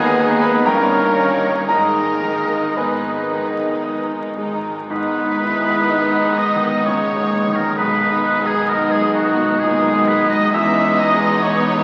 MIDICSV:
0, 0, Header, 1, 13, 480
1, 0, Start_track
1, 0, Key_signature, 5, "minor"
1, 0, Tempo, 943396
1, 339, Tempo, 1025641
1, 819, Time_signature, 3, 2, 24, 8
1, 819, Tempo, 1071429
1, 2259, Tempo, 986842
1, 2739, Tempo, 931677
1, 4659, Tempo, 904977
1, 5835, End_track
2, 0, Start_track
2, 0, Title_t, "Oboe"
2, 0, Program_c, 0, 68
2, 0, Note_on_c, 0, 75, 80
2, 334, Note_on_c, 0, 73, 73
2, 341, Note_off_c, 0, 75, 0
2, 809, Note_off_c, 0, 73, 0
2, 812, Note_on_c, 0, 75, 64
2, 2003, Note_off_c, 0, 75, 0
2, 2260, Note_on_c, 0, 71, 78
2, 2991, Note_on_c, 0, 75, 68
2, 2999, Note_off_c, 0, 71, 0
2, 3238, Note_on_c, 0, 73, 82
2, 3246, Note_off_c, 0, 75, 0
2, 3593, Note_on_c, 0, 70, 69
2, 3601, Note_off_c, 0, 73, 0
2, 3708, Note_off_c, 0, 70, 0
2, 3711, Note_on_c, 0, 71, 86
2, 4062, Note_on_c, 0, 68, 73
2, 4070, Note_off_c, 0, 71, 0
2, 4182, Note_on_c, 0, 70, 76
2, 4189, Note_off_c, 0, 68, 0
2, 4296, Note_on_c, 0, 68, 72
2, 4304, Note_off_c, 0, 70, 0
2, 4408, Note_off_c, 0, 68, 0
2, 4411, Note_on_c, 0, 66, 67
2, 4648, Note_on_c, 0, 68, 78
2, 4655, Note_off_c, 0, 66, 0
2, 4900, Note_on_c, 0, 71, 85
2, 4908, Note_off_c, 0, 68, 0
2, 5014, Note_off_c, 0, 71, 0
2, 5017, Note_on_c, 0, 75, 96
2, 5148, Note_on_c, 0, 76, 99
2, 5156, Note_off_c, 0, 75, 0
2, 5382, Note_on_c, 0, 75, 97
2, 5390, Note_off_c, 0, 76, 0
2, 5619, Note_on_c, 0, 73, 96
2, 5627, Note_off_c, 0, 75, 0
2, 5835, Note_off_c, 0, 73, 0
2, 5835, End_track
3, 0, Start_track
3, 0, Title_t, "Flute"
3, 0, Program_c, 1, 73
3, 0, Note_on_c, 1, 68, 105
3, 207, Note_off_c, 1, 68, 0
3, 210, Note_on_c, 1, 71, 78
3, 337, Note_on_c, 1, 70, 79
3, 344, Note_off_c, 1, 71, 0
3, 814, Note_off_c, 1, 70, 0
3, 817, Note_on_c, 1, 70, 71
3, 1302, Note_on_c, 1, 71, 54
3, 1308, Note_off_c, 1, 70, 0
3, 2024, Note_off_c, 1, 71, 0
3, 2262, Note_on_c, 1, 87, 58
3, 3688, Note_off_c, 1, 87, 0
3, 3710, Note_on_c, 1, 87, 66
3, 4642, Note_off_c, 1, 87, 0
3, 4662, Note_on_c, 1, 87, 62
3, 5138, Note_off_c, 1, 87, 0
3, 5150, Note_on_c, 1, 87, 70
3, 5835, Note_off_c, 1, 87, 0
3, 5835, End_track
4, 0, Start_track
4, 0, Title_t, "Violin section"
4, 0, Program_c, 2, 48
4, 0, Note_on_c, 2, 68, 98
4, 215, Note_off_c, 2, 68, 0
4, 217, Note_on_c, 2, 71, 80
4, 339, Note_off_c, 2, 71, 0
4, 340, Note_on_c, 2, 70, 84
4, 813, Note_off_c, 2, 70, 0
4, 818, Note_on_c, 2, 70, 82
4, 1291, Note_off_c, 2, 70, 0
4, 1299, Note_on_c, 2, 71, 54
4, 2023, Note_off_c, 2, 71, 0
4, 2264, Note_on_c, 2, 71, 75
4, 2968, Note_off_c, 2, 71, 0
4, 2988, Note_on_c, 2, 75, 60
4, 3229, Note_off_c, 2, 75, 0
4, 3232, Note_on_c, 2, 73, 70
4, 3590, Note_off_c, 2, 73, 0
4, 3592, Note_on_c, 2, 70, 64
4, 3707, Note_on_c, 2, 71, 68
4, 3709, Note_off_c, 2, 70, 0
4, 4055, Note_off_c, 2, 71, 0
4, 4061, Note_on_c, 2, 68, 60
4, 4179, Note_on_c, 2, 70, 66
4, 4180, Note_off_c, 2, 68, 0
4, 4299, Note_off_c, 2, 70, 0
4, 4301, Note_on_c, 2, 68, 59
4, 4418, Note_on_c, 2, 66, 64
4, 4420, Note_off_c, 2, 68, 0
4, 4655, Note_off_c, 2, 66, 0
4, 4663, Note_on_c, 2, 68, 63
4, 4908, Note_off_c, 2, 68, 0
4, 4908, Note_on_c, 2, 71, 72
4, 5029, Note_off_c, 2, 71, 0
4, 5031, Note_on_c, 2, 75, 77
4, 5149, Note_off_c, 2, 75, 0
4, 5149, Note_on_c, 2, 76, 83
4, 5379, Note_off_c, 2, 76, 0
4, 5387, Note_on_c, 2, 75, 80
4, 5623, Note_off_c, 2, 75, 0
4, 5623, Note_on_c, 2, 73, 89
4, 5835, Note_off_c, 2, 73, 0
4, 5835, End_track
5, 0, Start_track
5, 0, Title_t, "Trumpet"
5, 0, Program_c, 3, 56
5, 0, Note_on_c, 3, 71, 72
5, 335, Note_on_c, 3, 70, 72
5, 342, Note_off_c, 3, 71, 0
5, 739, Note_off_c, 3, 70, 0
5, 818, Note_on_c, 3, 68, 60
5, 1291, Note_off_c, 3, 68, 0
5, 1303, Note_on_c, 3, 68, 51
5, 2091, Note_off_c, 3, 68, 0
5, 5835, End_track
6, 0, Start_track
6, 0, Title_t, "Grand piano"
6, 0, Program_c, 4, 0
6, 0, Control_c, 4, 64, 127
6, 0, Note_on_c, 4, 39, 83
6, 0, Note_on_c, 4, 68, 67
6, 0, Note_on_c, 4, 75, 74
6, 0, Note_on_c, 4, 80, 94
6, 93, Note_off_c, 4, 68, 0
6, 99, Note_on_c, 4, 63, 66
6, 101, Note_on_c, 4, 68, 71
6, 194, Note_off_c, 4, 80, 0
6, 196, Note_off_c, 4, 75, 0
6, 210, Note_on_c, 4, 83, 88
6, 219, Note_on_c, 4, 71, 69
6, 319, Note_off_c, 4, 63, 0
6, 320, Note_off_c, 4, 68, 0
6, 321, Note_off_c, 4, 39, 0
6, 327, Note_off_c, 4, 83, 0
6, 332, Note_off_c, 4, 71, 0
6, 333, Note_on_c, 4, 82, 86
6, 338, Note_on_c, 4, 43, 81
6, 340, Note_on_c, 4, 70, 68
6, 340, Note_on_c, 4, 79, 67
6, 347, Control_c, 4, 64, 0
6, 422, Control_c, 4, 64, 127
6, 573, Note_on_c, 4, 73, 56
6, 574, Note_on_c, 4, 63, 50
6, 798, Note_off_c, 4, 82, 0
6, 801, Note_off_c, 4, 63, 0
6, 801, Note_off_c, 4, 70, 0
6, 801, Note_off_c, 4, 73, 0
6, 801, Note_off_c, 4, 79, 0
6, 804, Note_off_c, 4, 43, 0
6, 816, Note_on_c, 4, 82, 73
6, 818, Note_on_c, 4, 44, 59
6, 823, Note_on_c, 4, 70, 54
6, 825, Note_on_c, 4, 75, 61
6, 828, Control_c, 4, 64, 0
6, 907, Control_c, 4, 64, 127
6, 1060, Note_on_c, 4, 51, 49
6, 1282, Note_off_c, 4, 82, 0
6, 1285, Note_off_c, 4, 70, 0
6, 1286, Note_off_c, 4, 75, 0
6, 1298, Note_on_c, 4, 83, 50
6, 1302, Note_on_c, 4, 56, 48
6, 1302, Note_on_c, 4, 71, 42
6, 1305, Note_on_c, 4, 80, 41
6, 1445, Note_off_c, 4, 51, 0
6, 1545, Note_on_c, 4, 63, 52
6, 1685, Note_off_c, 4, 56, 0
6, 1780, Note_on_c, 4, 75, 48
6, 1928, Note_off_c, 4, 63, 0
6, 2005, Note_off_c, 4, 83, 0
6, 2007, Note_off_c, 4, 71, 0
6, 2008, Note_off_c, 4, 80, 0
6, 2020, Note_on_c, 4, 56, 43
6, 2168, Note_off_c, 4, 75, 0
6, 2241, Note_off_c, 4, 44, 0
6, 2257, Note_off_c, 4, 56, 0
6, 2257, Note_on_c, 4, 44, 59
6, 2268, Control_c, 4, 64, 0
6, 2358, Control_c, 4, 64, 127
6, 2422, Note_on_c, 4, 63, 52
6, 2587, Note_on_c, 4, 56, 49
6, 2677, Note_off_c, 4, 63, 0
6, 2747, Note_on_c, 4, 63, 47
6, 2842, Note_off_c, 4, 56, 0
6, 2913, Note_on_c, 4, 56, 47
6, 3005, Note_off_c, 4, 63, 0
6, 3078, Note_on_c, 4, 51, 55
6, 3168, Note_off_c, 4, 56, 0
6, 3206, Note_off_c, 4, 44, 0
6, 3233, Note_off_c, 4, 51, 0
6, 3239, Note_on_c, 4, 49, 39
6, 3394, Note_off_c, 4, 49, 0
6, 3394, Note_on_c, 4, 56, 50
6, 3554, Note_on_c, 4, 51, 45
6, 3647, Note_off_c, 4, 56, 0
6, 3710, Note_off_c, 4, 51, 0
6, 3712, Note_on_c, 4, 35, 60
6, 3716, Control_c, 4, 64, 0
6, 3783, Control_c, 4, 64, 127
6, 3875, Note_on_c, 4, 63, 50
6, 4027, Note_on_c, 4, 56, 51
6, 4122, Note_off_c, 4, 63, 0
6, 4190, Note_on_c, 4, 63, 53
6, 4278, Note_off_c, 4, 56, 0
6, 4351, Note_on_c, 4, 56, 54
6, 4440, Note_off_c, 4, 63, 0
6, 4507, Note_on_c, 4, 47, 61
6, 4602, Note_off_c, 4, 56, 0
6, 4667, Note_on_c, 4, 46, 52
6, 4763, Note_off_c, 4, 47, 0
6, 4827, Note_on_c, 4, 56, 57
6, 4828, Note_off_c, 4, 46, 0
6, 4988, Note_on_c, 4, 47, 58
6, 5085, Note_off_c, 4, 56, 0
6, 5128, Note_off_c, 4, 35, 0
6, 5145, Note_on_c, 4, 40, 74
6, 5147, Note_off_c, 4, 47, 0
6, 5156, Control_c, 4, 64, 0
6, 5228, Control_c, 4, 64, 127
6, 5309, Note_on_c, 4, 63, 56
6, 5465, Note_on_c, 4, 56, 65
6, 5560, Note_off_c, 4, 63, 0
6, 5624, Note_on_c, 4, 63, 57
6, 5719, Note_off_c, 4, 56, 0
6, 5781, Note_on_c, 4, 56, 55
6, 5835, Note_off_c, 4, 40, 0
6, 5835, Note_off_c, 4, 56, 0
6, 5835, Note_off_c, 4, 63, 0
6, 5835, End_track
7, 0, Start_track
7, 0, Title_t, "Violin section"
7, 0, Program_c, 5, 48
7, 0, Note_on_c, 5, 59, 76
7, 0, Note_on_c, 5, 63, 72
7, 92, Note_off_c, 5, 59, 0
7, 92, Note_off_c, 5, 63, 0
7, 98, Note_on_c, 5, 63, 62
7, 100, Note_on_c, 5, 59, 70
7, 334, Note_off_c, 5, 63, 0
7, 336, Note_off_c, 5, 59, 0
7, 341, Note_on_c, 5, 61, 60
7, 341, Note_on_c, 5, 63, 56
7, 569, Note_off_c, 5, 61, 0
7, 569, Note_off_c, 5, 63, 0
7, 578, Note_on_c, 5, 61, 56
7, 578, Note_on_c, 5, 63, 52
7, 817, Note_off_c, 5, 61, 0
7, 817, Note_off_c, 5, 63, 0
7, 822, Note_on_c, 5, 63, 52
7, 826, Note_off_c, 5, 63, 0
7, 826, Note_on_c, 5, 63, 52
7, 1059, Note_off_c, 5, 63, 0
7, 1064, Note_on_c, 5, 63, 52
7, 1533, Note_off_c, 5, 63, 0
7, 1542, Note_on_c, 5, 63, 41
7, 1543, Note_off_c, 5, 63, 0
7, 1543, Note_on_c, 5, 63, 45
7, 2016, Note_off_c, 5, 63, 0
7, 2030, Note_on_c, 5, 63, 43
7, 2031, Note_off_c, 5, 63, 0
7, 2031, Note_on_c, 5, 63, 42
7, 2258, Note_off_c, 5, 63, 0
7, 2264, Note_on_c, 5, 63, 60
7, 2265, Note_on_c, 5, 59, 65
7, 3689, Note_off_c, 5, 59, 0
7, 3689, Note_off_c, 5, 63, 0
7, 3713, Note_on_c, 5, 63, 58
7, 3714, Note_on_c, 5, 59, 65
7, 4644, Note_off_c, 5, 59, 0
7, 4644, Note_off_c, 5, 63, 0
7, 4664, Note_on_c, 5, 59, 54
7, 4666, Note_on_c, 5, 63, 59
7, 5139, Note_off_c, 5, 59, 0
7, 5140, Note_off_c, 5, 63, 0
7, 5154, Note_on_c, 5, 63, 79
7, 5155, Note_on_c, 5, 59, 78
7, 5835, Note_off_c, 5, 59, 0
7, 5835, Note_off_c, 5, 63, 0
7, 5835, End_track
8, 0, Start_track
8, 0, Title_t, "French horn section"
8, 0, Program_c, 6, 60
8, 0, Note_on_c, 6, 56, 84
8, 207, Note_off_c, 6, 56, 0
8, 213, Note_on_c, 6, 59, 80
8, 337, Note_off_c, 6, 59, 0
8, 339, Note_on_c, 6, 58, 81
8, 811, Note_off_c, 6, 58, 0
8, 817, Note_on_c, 6, 58, 66
8, 1290, Note_off_c, 6, 58, 0
8, 1302, Note_on_c, 6, 59, 47
8, 2024, Note_off_c, 6, 59, 0
8, 2259, Note_on_c, 6, 63, 62
8, 2485, Note_off_c, 6, 63, 0
8, 2504, Note_on_c, 6, 64, 61
8, 2736, Note_off_c, 6, 64, 0
8, 2738, Note_on_c, 6, 63, 57
8, 2985, Note_off_c, 6, 63, 0
8, 2989, Note_on_c, 6, 59, 50
8, 3229, Note_off_c, 6, 59, 0
8, 3229, Note_on_c, 6, 56, 62
8, 4181, Note_off_c, 6, 56, 0
8, 4189, Note_on_c, 6, 63, 72
8, 5131, Note_off_c, 6, 63, 0
8, 5155, Note_on_c, 6, 61, 69
8, 5622, Note_on_c, 6, 59, 66
8, 5625, Note_off_c, 6, 61, 0
8, 5835, Note_off_c, 6, 59, 0
8, 5835, End_track
9, 0, Start_track
9, 0, Title_t, "Clarinet"
9, 0, Program_c, 7, 71
9, 2255, Note_on_c, 7, 56, 56
9, 3684, Note_off_c, 7, 56, 0
9, 3711, Note_on_c, 7, 56, 62
9, 4643, Note_off_c, 7, 56, 0
9, 4661, Note_on_c, 7, 56, 67
9, 5138, Note_off_c, 7, 56, 0
9, 5149, Note_on_c, 7, 56, 77
9, 5835, Note_off_c, 7, 56, 0
9, 5835, End_track
10, 0, Start_track
10, 0, Title_t, "Trombone section"
10, 0, Program_c, 8, 61
10, 0, Note_on_c, 8, 51, 91
10, 0, Note_on_c, 8, 59, 80
10, 259, Note_off_c, 8, 51, 0
10, 259, Note_off_c, 8, 59, 0
10, 345, Note_on_c, 8, 51, 74
10, 346, Note_on_c, 8, 61, 80
10, 813, Note_off_c, 8, 51, 0
10, 813, Note_off_c, 8, 61, 0
10, 817, Note_on_c, 8, 63, 61
10, 820, Note_on_c, 8, 51, 55
10, 1292, Note_off_c, 8, 51, 0
10, 1298, Note_off_c, 8, 63, 0
10, 1303, Note_on_c, 8, 63, 57
10, 1304, Note_on_c, 8, 51, 61
10, 2091, Note_off_c, 8, 63, 0
10, 2092, Note_off_c, 8, 51, 0
10, 5835, End_track
11, 0, Start_track
11, 0, Title_t, "Viola section"
11, 0, Program_c, 10, 48
11, 0, Note_on_c, 10, 51, 72
11, 0, Note_on_c, 10, 59, 70
11, 79, Note_off_c, 10, 51, 0
11, 80, Note_off_c, 10, 59, 0
11, 85, Note_on_c, 10, 51, 67
11, 86, Note_on_c, 10, 59, 70
11, 325, Note_off_c, 10, 51, 0
11, 328, Note_off_c, 10, 59, 0
11, 329, Note_on_c, 10, 58, 67
11, 331, Note_on_c, 10, 51, 63
11, 555, Note_off_c, 10, 51, 0
11, 555, Note_off_c, 10, 58, 0
11, 560, Note_on_c, 10, 51, 49
11, 561, Note_on_c, 10, 58, 56
11, 808, Note_off_c, 10, 51, 0
11, 808, Note_off_c, 10, 58, 0
11, 814, Note_on_c, 10, 51, 51
11, 814, Note_on_c, 10, 56, 46
11, 1048, Note_off_c, 10, 56, 0
11, 1049, Note_off_c, 10, 51, 0
11, 1053, Note_on_c, 10, 56, 48
11, 1054, Note_on_c, 10, 51, 54
11, 1527, Note_off_c, 10, 51, 0
11, 1528, Note_off_c, 10, 56, 0
11, 1532, Note_on_c, 10, 51, 46
11, 1533, Note_on_c, 10, 56, 53
11, 2010, Note_off_c, 10, 51, 0
11, 2010, Note_off_c, 10, 56, 0
11, 2021, Note_on_c, 10, 51, 45
11, 2021, Note_on_c, 10, 56, 42
11, 2250, Note_off_c, 10, 51, 0
11, 2250, Note_off_c, 10, 56, 0
11, 2255, Note_on_c, 10, 56, 54
11, 2256, Note_on_c, 10, 51, 56
11, 3684, Note_off_c, 10, 51, 0
11, 3684, Note_off_c, 10, 56, 0
11, 3701, Note_on_c, 10, 51, 62
11, 3702, Note_on_c, 10, 56, 60
11, 4638, Note_off_c, 10, 51, 0
11, 4638, Note_off_c, 10, 56, 0
11, 4657, Note_on_c, 10, 51, 65
11, 4657, Note_on_c, 10, 56, 73
11, 5136, Note_off_c, 10, 51, 0
11, 5136, Note_off_c, 10, 56, 0
11, 5146, Note_on_c, 10, 52, 64
11, 5147, Note_on_c, 10, 56, 66
11, 5835, Note_off_c, 10, 52, 0
11, 5835, Note_off_c, 10, 56, 0
11, 5835, End_track
12, 0, Start_track
12, 0, Title_t, "Cello section"
12, 0, Program_c, 11, 48
12, 0, Note_on_c, 11, 39, 84
12, 278, Note_off_c, 11, 39, 0
12, 335, Note_on_c, 11, 43, 79
12, 758, Note_off_c, 11, 43, 0
12, 813, Note_on_c, 11, 44, 62
12, 1241, Note_off_c, 11, 44, 0
12, 1299, Note_on_c, 11, 44, 60
12, 1723, Note_off_c, 11, 44, 0
12, 1780, Note_on_c, 11, 44, 61
12, 2206, Note_off_c, 11, 44, 0
12, 2261, Note_on_c, 11, 44, 61
12, 3208, Note_off_c, 11, 44, 0
12, 3229, Note_on_c, 11, 46, 54
12, 3707, Note_on_c, 11, 47, 56
12, 3708, Note_off_c, 11, 46, 0
12, 5147, Note_off_c, 11, 47, 0
12, 5147, Note_on_c, 11, 40, 70
12, 5835, Note_off_c, 11, 40, 0
12, 5835, End_track
13, 0, Start_track
13, 0, Title_t, "Double bass section"
13, 0, Program_c, 12, 48
13, 0, Note_on_c, 12, 39, 88
13, 278, Note_off_c, 12, 39, 0
13, 337, Note_on_c, 12, 31, 75
13, 759, Note_off_c, 12, 31, 0
13, 816, Note_on_c, 12, 32, 62
13, 1243, Note_off_c, 12, 32, 0
13, 1298, Note_on_c, 12, 32, 61
13, 1722, Note_off_c, 12, 32, 0
13, 1781, Note_on_c, 12, 32, 55
13, 2206, Note_off_c, 12, 32, 0
13, 2261, Note_on_c, 12, 32, 62
13, 3208, Note_off_c, 12, 32, 0
13, 3231, Note_on_c, 12, 34, 52
13, 3709, Note_off_c, 12, 34, 0
13, 3710, Note_on_c, 12, 35, 61
13, 5146, Note_on_c, 12, 28, 74
13, 5148, Note_off_c, 12, 35, 0
13, 5835, Note_off_c, 12, 28, 0
13, 5835, End_track
0, 0, End_of_file